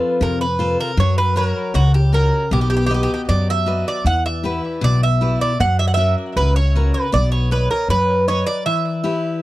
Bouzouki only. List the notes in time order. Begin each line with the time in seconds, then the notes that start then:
Already playing: B4
0.22 A#4
0.41 B4
0.80 A#4
1.00 C#5
1.18 B4
1.37 A#4
1.75 F#4
1.94 G4
2.14 A#4
2.53 G4
2.61 G4
2.70 G4
2.77 G4
2.86 G4
2.94 G4
3.03 G4
3.14 G4
3.29 D5
3.50 E5
3.88 D5
4.07 F#5
4.26 E5
4.84 D5
5.03 E5
5.41 D5
5.61 F#5
5.79 E5
5.88 F#5
5.94 E5
6.37 B4
6.56 C#5
6.94 B4
7.14 D5
7.32 C#5
7.52 B4
7.71 A#4
7.90 B4
8.28 C#5
8.47 D5
8.66 E5